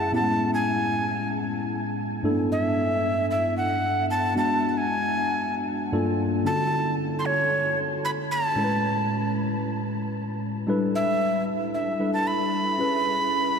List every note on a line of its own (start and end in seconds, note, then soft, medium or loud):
0.00 0.15 F#2 medium
0.00 0.15 A3 medium
0.00 0.13 C#4 medium
0.00 0.14 E4 medium
0.00 0.15 G#4 medium
0.00 0.14 A5 loud
0.12 2.20 A2 medium
0.12 2.20 B3 medium
0.12 2.20 C#4 medium
0.12 2.21 E4 medium
0.12 0.20 G4 medium
0.12 0.51 A5 loud
0.21 2.24 G#3 medium
0.54 1.29 G#5 loud
2.23 4.30 G2 medium
2.23 2.30 A3 medium
2.23 4.31 D4 medium
2.23 4.31 E4 medium
2.23 4.32 A4 medium
2.30 4.33 B3 medium
2.52 3.26 E5 medium
3.31 3.55 E5 medium
3.57 4.06 F#5 loud
4.10 4.34 A5 loud
4.34 5.91 G#3 medium
4.34 5.90 B3 medium
4.34 5.90 D4 medium
4.34 5.90 F#4 medium
4.34 4.69 A5 loud
4.69 4.79 A5 medium
4.77 5.55 G#5 loud
5.92 6.45 G2 medium
5.92 6.46 A#3 medium
5.92 6.46 D4 medium
5.92 6.46 F4 medium
5.92 6.46 A4 medium
6.44 8.52 D3 medium
6.44 8.52 C#4 medium
6.44 8.53 E4 medium
6.44 8.53 F#4 medium
6.44 8.53 A4 medium
6.44 6.95 A5 loud
7.19 7.27 C6 medium
7.26 7.78 C#5 loud
8.05 8.11 B5 loud
8.31 9.32 A5 loud
8.55 10.63 A2 medium
8.55 10.64 G#3 medium
8.55 10.63 C#4 medium
8.55 10.64 E4 medium
8.55 8.64 A#4 medium
8.64 10.67 B4 medium
10.67 11.97 G3 medium
10.67 11.97 D4 medium
10.67 11.98 E4 medium
10.67 11.98 A4 medium
10.67 11.98 B4 medium
10.95 11.44 E5 loud
11.74 12.11 E5 loud
11.99 12.79 G3 medium
11.99 12.79 D4 soft
11.99 12.78 E4 soft
11.99 12.79 A4 soft
11.99 12.79 B4 medium
12.13 12.29 A5 loud
12.27 13.59 B5 loud
12.78 13.59 C#4 medium
12.78 13.59 E4 medium
12.78 13.59 G#4 medium
12.78 13.59 B4 medium